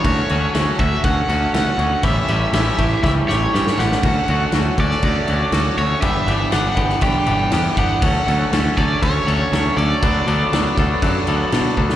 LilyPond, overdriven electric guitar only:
\new Staff \with { instrumentName = "Overdriven electric guitar" } { \time 4/4 \key d \major \tempo 4 = 120 cis''4. e''8 fis''4 fis''4 | e''4 e''4 e''8 cis''4 fis''8~ | fis''4. d''2 cis''8 | e''4 fis''4 g''4. fis''8~ |
fis''4. d''8 cis''4. d''8~ | d''2.~ d''8 r8 | }